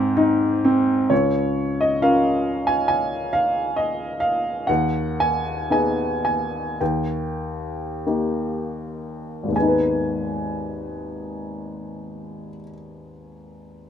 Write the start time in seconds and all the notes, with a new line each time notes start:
Already playing: G#2 C4 C5
0.17 D#4
0.65 C4
1.10 C#2 C#5
1.81 D#5
2.01 C#4 F4 A#4 F5
2.67 G#5
2.88 G#5
3.33 F5
3.76 D#5
4.20 F5
4.67 D#2 F#5
5.20 G#5
5.70 B3 D#4 G#4 G#5
6.25 G#5
6.81 D#2 G5
8.06 A#3 D#4 G4
9.43 G#1
9.48 D#2
9.52 G#3 G#5
9.57 B3
9.62 D#4
9.67 B4